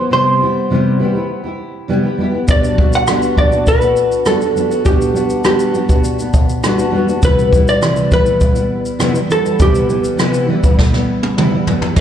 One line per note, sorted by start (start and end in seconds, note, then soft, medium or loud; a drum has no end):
0.00 0.11 B3 soft
0.00 0.11 E4 soft
0.00 0.11 G4 soft
0.00 0.12 C5 medium
0.11 0.41 C3 medium
0.11 0.39 G3 medium
0.11 0.41 B3 medium
0.11 0.41 E4 medium
0.11 0.42 G4 medium
0.11 2.16 C5 medium
0.40 0.70 G3 soft
0.40 0.70 B3 medium
0.40 0.71 E4 medium
0.40 0.71 G4 medium
0.70 1.00 C3 medium
0.70 0.98 G3 medium
0.70 0.99 B3 medium
0.70 1.00 E4 medium
0.70 1.01 G4 medium
0.99 1.15 G3 medium
0.99 1.15 B3 medium
0.99 1.14 E4 medium
0.99 1.12 G4 medium
1.13 1.45 B3 soft
1.13 1.44 E4 medium
1.13 1.42 G4 soft
1.44 1.89 E4 soft
1.44 1.89 G4 soft
1.88 2.04 C3 medium
1.88 2.04 G3 medium
1.88 2.04 B3 medium
1.88 2.04 E4 medium
1.88 2.02 G4 medium
2.04 2.18 B3 soft
2.04 2.19 E4 soft
2.04 2.19 G4 medium
2.18 2.33 G3 medium
2.18 2.34 B3 medium
2.18 2.32 E4 medium
2.18 2.31 G4 medium
2.32 2.47 B3 soft
2.32 2.49 E4 soft
2.32 2.48 G4 soft
2.47 2.75 G3 medium
2.47 2.77 B3 medium
2.47 2.78 D4 medium
2.47 2.79 F#4 medium
2.47 2.96 D5 medium
2.47 kick loud
2.47 shaker medium
2.64 shaker soft
2.77 3.06 G3 medium
2.77 3.07 B3 medium
2.77 3.07 D4 medium
2.77 3.08 F#4 medium
2.77 kick medium
2.93 3.40 F#5 medium
2.93 shaker medium
3.07 3.35 G3 medium
3.07 3.36 B3 medium
3.07 3.37 D4 medium
3.07 3.38 F#4 medium
3.07 cross-stick loud
3.07 shaker medium
3.22 shaker soft
3.36 3.52 G3 medium
3.36 3.52 B3 medium
3.36 3.51 D4 medium
3.36 3.49 F#4 medium
3.36 3.68 D5 medium
3.36 kick medium
3.50 3.82 B3 soft
3.50 3.81 D4 soft
3.50 3.79 F#4 soft
3.50 shaker soft
3.66 4.29 B4 medium
3.66 kick medium
3.66 shaker medium
3.81 4.25 B3 soft
3.81 4.26 D4 soft
3.81 4.26 F#4 soft
3.81 shaker soft
3.96 shaker soft
4.12 shaker soft
4.25 4.41 G3 medium
4.25 4.41 B3 medium
4.25 4.42 D4 medium
4.25 4.39 F#4 medium
4.25 4.86 A4 medium
4.25 cross-stick medium
4.25 shaker medium
4.40 4.55 B3 soft
4.40 4.56 D4 soft
4.40 4.56 F#4 medium
4.40 shaker soft
4.55 4.70 G3 medium
4.55 4.71 B3 soft
4.55 4.70 D4 soft
4.55 4.68 F#4 medium
4.55 shaker soft
4.69 4.84 B3 soft
4.69 4.85 D4 soft
4.69 4.85 F#4 soft
4.69 shaker soft
4.84 5.12 G3 medium
4.84 5.13 B3 medium
4.84 5.14 D4 medium
4.84 5.15 F#4 medium
4.84 5.45 G4 medium
4.84 kick loud
4.84 shaker medium
5.01 shaker soft
5.13 5.43 G3 medium
5.13 5.44 B3 medium
5.13 5.44 D4 medium
5.13 5.45 F#4 medium
5.13 shaker soft
5.30 shaker soft
5.44 5.72 G3 medium
5.44 5.73 B3 medium
5.44 5.74 D4 medium
5.44 5.75 F#4 medium
5.44 6.60 G4 medium
5.44 cross-stick loud
5.44 shaker medium
5.59 shaker soft
5.73 5.89 G3 medium
5.73 5.89 B3 medium
5.73 5.89 D4 medium
5.73 5.87 F#4 medium
5.73 shaker soft
5.88 6.20 B3 soft
5.88 6.19 D4 soft
5.88 6.19 F#4 soft
5.88 kick medium
5.88 shaker soft
6.04 shaker medium
6.19 6.63 B3 soft
6.19 6.63 D4 soft
6.19 shaker soft
6.34 kick medium
6.34 shaker soft
6.49 shaker soft
6.63 6.78 G3 medium
6.63 6.79 B3 medium
6.63 6.78 D4 medium
6.63 6.76 F#4 medium
6.63 cross-stick medium
6.63 shaker medium
6.78 6.92 B3 soft
6.78 6.93 D4 soft
6.78 6.93 F#4 medium
6.78 shaker soft
6.92 7.07 G3 medium
6.92 7.08 B3 medium
6.92 7.07 D4 medium
6.92 7.05 F#4 medium
7.07 7.22 B3 soft
7.07 7.23 D4 soft
7.07 7.22 F#4 soft
7.07 shaker soft
7.22 7.52 C3 medium
7.22 7.49 E3 medium
7.22 7.50 G3 medium
7.22 7.51 B3 medium
7.22 7.52 E4 medium
7.22 7.65 B4 medium
7.22 kick loud
7.22 shaker medium
7.39 shaker soft
7.51 7.80 E3 medium
7.51 7.81 G3 medium
7.51 7.81 B3 medium
7.51 7.82 E4 medium
7.51 kick medium
7.51 shaker soft
7.68 8.13 D5 medium
7.68 shaker soft
7.81 8.11 C3 medium
7.81 8.09 E3 medium
7.81 8.10 G3 medium
7.81 8.11 B3 medium
7.81 8.12 E4 medium
7.81 cross-stick loud
7.81 shaker medium
7.96 shaker soft
8.10 8.26 E3 medium
8.10 8.26 G3 medium
8.10 8.25 B3 medium
8.10 8.24 E4 medium
8.10 9.27 B4 medium
8.10 kick medium
8.10 shaker soft
8.25 8.56 G3 soft
8.25 8.55 B3 soft
8.25 8.53 E4 soft
8.25 shaker soft
8.40 kick medium
8.40 shaker medium
8.54 8.98 G3 soft
8.54 8.99 B3 soft
8.54 9.00 E4 soft
8.54 shaker soft
8.85 shaker soft
8.99 9.15 C3 medium
8.99 9.15 E3 medium
8.99 9.15 G3 medium
8.99 9.14 B3 medium
8.99 9.12 E4 medium
8.99 cross-stick medium
8.99 shaker medium
9.13 9.28 G3 soft
9.13 9.29 B3 soft
9.13 9.29 E4 soft
9.13 shaker soft
9.29 9.44 E3 medium
9.29 9.45 G3 medium
9.29 9.44 B3 medium
9.29 9.42 E4 medium
9.29 9.62 A4 medium
9.29 cross-stick soft
9.29 shaker soft
9.43 9.59 G3 soft
9.43 9.59 B3 soft
9.43 9.59 E4 soft
9.43 shaker soft
9.59 9.89 C3 medium
9.59 9.87 E3 medium
9.59 9.88 G3 medium
9.59 9.89 B3 medium
9.59 9.90 E4 medium
9.59 11.35 G4 medium
9.59 kick loud
9.59 shaker medium
9.75 shaker medium
9.88 10.16 E3 soft
9.88 10.17 G3 medium
9.88 10.17 B3 medium
9.88 10.18 E4 medium
9.88 shaker soft
10.04 shaker soft
10.17 10.48 C3 medium
10.17 10.46 E3 medium
10.17 10.47 G3 medium
10.17 10.48 B3 medium
10.17 10.49 E4 medium
10.17 cross-stick loud
10.17 shaker medium
10.34 shaker soft
10.47 10.63 E3 medium
10.47 10.63 G3 medium
10.47 10.63 B3 medium
10.47 10.61 E4 medium
10.62 10.94 G3 soft
10.62 10.92 B3 soft
10.62 10.91 E4 soft
10.62 kick medium
10.62 shaker soft
10.79 kick medium
10.79 snare soft
10.92 11.37 G3 soft
10.92 11.37 B3 soft
10.92 11.37 E4 soft
10.92 snare soft
11.23 high tom medium
11.37 11.52 C3 medium
11.37 11.52 E3 medium
11.37 11.53 G3 medium
11.37 11.52 B3 medium
11.37 11.51 E4 medium
11.37 mid tom medium
11.52 11.66 G3 soft
11.52 11.67 B3 soft
11.52 11.67 E4 medium
11.66 11.81 E3 soft
11.66 11.82 G3 medium
11.66 11.81 B3 medium
11.66 11.80 E4 medium
11.66 floor tom medium
11.81 11.96 G3 soft
11.81 11.97 B3 soft
11.81 11.96 E4 soft
11.81 floor tom medium
11.96 12.00 B2 medium
11.96 12.00 F#3 medium
11.96 12.00 A3 medium
11.96 kick loud
11.96 crash medium